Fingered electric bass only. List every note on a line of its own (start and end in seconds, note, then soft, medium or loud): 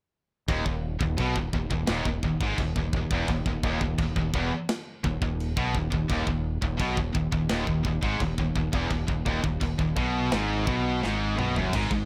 0.48 0.65 D#1 loud
0.66 0.99 D#1 medium
1.00 1.17 D#1 medium
1.18 1.35 B1 medium
1.36 1.53 D#1 medium
1.53 1.70 D#1 medium
1.71 1.87 D#1 medium
1.88 2.05 D#1 medium
2.06 2.22 D#1 medium
2.23 2.40 D#1 medium
2.41 2.57 G#1 medium
2.58 2.75 D#1 medium
2.76 2.92 D#1 medium
2.93 3.10 D#1 medium
3.11 3.27 E1 medium
3.28 3.45 D#1 medium
3.45 3.62 D#1 medium
3.63 3.80 D#1 loud
3.81 3.98 D#1 medium
3.98 4.15 D#1 medium
4.16 4.33 D#1 medium
4.34 4.51 E1 medium
5.04 5.21 D#1 medium
5.21 5.55 D#1 medium
5.57 5.74 B1 medium
5.75 5.91 D#1 medium
5.92 6.09 D#1 medium
6.10 6.26 D#1 loud
6.27 6.60 D#1 medium
6.62 6.79 D#1 medium
6.80 6.97 B1 loud
6.97 7.14 D#1 medium
7.15 7.32 D#1 medium
7.32 7.49 D#1 medium
7.51 7.67 D#1 loud
7.67 7.84 D#1 medium
7.85 8.02 D#1 medium
8.03 8.20 G#1 medium
8.20 8.37 D#1 medium
8.38 8.55 D#1 medium
8.56 8.72 D#1 medium
8.73 8.90 E1 loud
8.91 9.08 D#1 medium
9.09 9.25 D#1 medium
9.26 9.43 D#1 loud
9.44 9.61 D#1 medium
9.61 9.78 D#1 medium
9.79 9.96 D#1 medium
9.96 10.30 B1 medium
10.33 10.66 G#1 medium
10.68 11.01 B1 loud
11.04 11.37 G#1 loud
11.39 11.55 B1 medium
11.57 11.73 F#1 loud
11.73 11.90 G#1 loud
11.91 12.05 G#1 medium